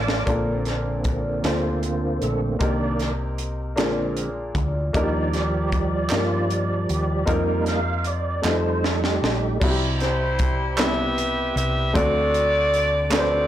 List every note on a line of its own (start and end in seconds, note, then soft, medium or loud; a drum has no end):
0.00 0.24 A1 medium
0.00 0.24 A#3 medium
0.00 0.26 A#3 medium
0.00 0.29 C#4 medium
0.00 0.11 D4 medium
0.00 0.27 F4 medium
0.00 0.28 A4 medium
0.00 0.28 C5 medium
0.00 0.23 F5 medium
0.00 0.23 A5 medium
0.00 0.24 D6 medium
0.08 snare loud
0.26 1.40 A#1 medium
0.26 1.40 A#2 medium
0.26 2.20 D3 soft
0.26 1.25 A#3 medium
0.26 2.57 A#3 soft
0.26 2.21 C4 medium
0.26 1.25 D4 medium
0.26 1.26 F4 medium
0.26 1.26 A4 medium
0.26 1.26 A#4 medium
0.26 kick medium
0.26 closed hi-hat medium
0.65 snare soft
0.65 closed hi-hat soft
1.04 kick medium
1.04 closed hi-hat soft
1.42 2.18 D2 medium
1.42 2.41 A#3 medium
1.42 2.42 D4 medium
1.42 2.42 F4 medium
1.42 2.18 F4 medium
1.42 2.43 A4 medium
1.42 2.43 C5 medium
1.42 snare loud
1.42 closed hi-hat medium
1.83 closed hi-hat soft
2.21 2.58 A#1 medium
2.21 2.56 D3 soft
2.21 2.57 A3 soft
2.21 2.57 C4 soft
2.21 2.41 A4 medium
2.21 closed hi-hat soft
2.59 3.77 C2 loud
2.59 3.74 C3 medium
2.59 3.12 D#3 medium
2.59 3.58 A#3 medium
2.59 3.12 A#3 soft
2.59 3.59 C4 medium
2.59 2.97 D4 medium
2.59 3.59 D#4 medium
2.59 3.60 G4 medium
2.59 3.60 A#4 medium
2.59 3.13 D5 medium
2.59 kick loud
2.59 closed hi-hat medium
2.99 snare soft
2.99 closed hi-hat soft
3.38 closed hi-hat soft
3.76 4.51 A#1 medium
3.76 4.90 A#2 medium
3.76 4.30 D3 medium
3.76 4.30 G#3 soft
3.76 4.75 A#3 medium
3.76 4.30 C4 medium
3.76 4.76 D4 medium
3.76 4.76 F4 medium
3.76 4.76 G#4 medium
3.76 4.77 A#4 medium
3.76 snare loud
3.76 closed hi-hat medium
4.17 closed hi-hat medium
4.55 4.91 D2 medium
4.55 kick medium
4.55 closed hi-hat soft
4.93 6.07 D#2 loud
4.93 6.07 D#3 medium
4.93 7.24 F3 medium
4.93 7.24 G3 soft
4.93 5.92 A#3 medium
4.93 5.93 D4 medium
4.93 5.93 D#4 medium
4.93 5.35 D#4 medium
4.93 5.01 F4 medium
4.93 5.94 A#4 medium
4.93 7.25 D5 medium
4.93 kick loud
4.93 closed hi-hat medium
5.02 5.97 G4 medium
5.33 5.72 G4 medium
5.33 snare soft
5.33 closed hi-hat soft
5.72 5.91 G4 medium
5.72 kick medium
5.72 closed hi-hat soft
6.09 6.85 G2 medium
6.09 7.09 A#3 medium
6.09 7.09 D4 medium
6.09 7.10 D#4 soft
6.09 6.48 F4 medium
6.09 7.10 G4 medium
6.09 7.11 A#4 medium
6.09 snare loud
6.09 clap medium
6.09 closed hi-hat medium
6.50 closed hi-hat medium
6.89 7.25 D#2 medium
6.89 7.09 G4 medium
6.89 closed hi-hat medium
7.10 7.27 G4 medium
7.26 8.41 F2 loud
7.26 7.80 G3 medium
7.26 8.25 A#3 medium
7.26 7.80 A#3 soft
7.26 8.26 C4 medium
7.26 8.26 D#4 medium
7.26 7.80 D#4 medium
7.26 8.27 F4 medium
7.26 8.27 A#4 medium
7.26 7.65 A#4 medium
7.26 kick loud
7.26 closed hi-hat medium
7.66 8.08 F5 loud
7.66 snare soft
7.66 closed hi-hat medium
8.04 8.47 D5 medium
8.04 closed hi-hat medium
8.42 9.18 F2 loud
8.42 9.57 G3 medium
8.42 9.42 A3 medium
8.42 9.58 A3 medium
8.42 9.42 C4 medium
8.42 9.43 D#4 medium
8.42 9.58 D#4 medium
8.42 9.43 F4 medium
8.42 9.44 A4 medium
8.42 snare medium
8.42 clap medium
8.46 8.86 C5 loud
8.84 8.94 A4 medium
8.84 snare medium
8.96 9.03 A4 medium
9.04 9.58 G4 medium
9.04 snare medium
9.22 9.58 A#1 medium
9.22 snare loud
9.60 11.52 C2 loud
9.60 10.75 C3 medium
9.60 10.59 G3 medium
9.60 10.60 C4 medium
9.60 10.61 E4 medium
9.60 9.69 F#4 medium
9.60 kick loud
9.60 crash loud
9.70 10.64 G4 medium
10.00 11.15 E4 medium
10.00 10.79 G4 medium
10.00 10.75 C5 medium
10.00 snare soft
10.00 closed hi-hat soft
10.39 kick medium
10.39 closed hi-hat medium
10.77 11.76 G3 medium
10.77 11.77 B3 medium
10.77 11.77 C4 medium
10.77 11.78 E4 medium
10.77 11.92 G4 medium
10.77 11.78 G4 medium
10.77 11.92 B4 medium
10.77 11.57 E5 loud
10.77 snare loud
10.77 clap loud
10.77 closed hi-hat loud
11.18 closed hi-hat medium
11.56 11.92 C2 medium
11.56 11.93 E5 loud
11.56 closed hi-hat medium
11.93 13.47 D2 loud
11.93 13.08 D3 medium
11.93 12.93 A3 medium
11.93 12.93 C4 medium
11.93 12.93 D4 medium
11.93 12.94 F#4 medium
11.93 13.09 F#4 medium
11.93 13.08 A4 medium
11.93 12.94 A4 medium
11.93 13.12 D5 loud
11.93 kick loud
11.93 closed hi-hat medium
12.34 closed hi-hat medium
12.74 closed hi-hat medium
13.10 13.47 A3 medium
13.10 13.47 C4 medium
13.10 13.47 D4 medium
13.10 13.47 F#4 medium
13.10 13.19 B4 medium
13.10 snare loud
13.10 clap medium
13.10 closed hi-hat loud
13.14 13.47 A4 medium
13.14 13.47 D5 medium
13.19 13.47 C5 medium